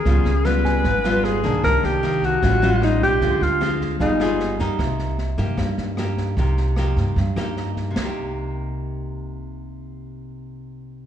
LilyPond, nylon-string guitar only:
\new Staff \with { instrumentName = "Nylon-string guitar" } { \time 4/4 \key c \minor \tempo 4 = 152 << { <g ces' f'>8 r8 <g ces' f'>4 r8 <g ces' f'>4 <ees bes d'>8~ | <ees bes d'>4 <ees bes d'>4 <g cis' f'>8 <g cis' f'>4. | <aes c' f'>8 r8 <aes c' f'>4 <b f' aes'>8 <b f' aes'>4 <bes ees' g'>8~ | <bes ees' g'>4 r8 <bes ees' g'>4. <bes ees' g'>4 |
<bes ees' g'>4 <bes ees' g'>4 r8 <bes ees' g'>4. | <c bes ees' g'>1~ | <c bes ees' g'>1 | } \\ { des2 aes,2 | c2 a,2 | d2 g2 | c2 g,2 |
c2 g,2 | r1 | r1 | } >> }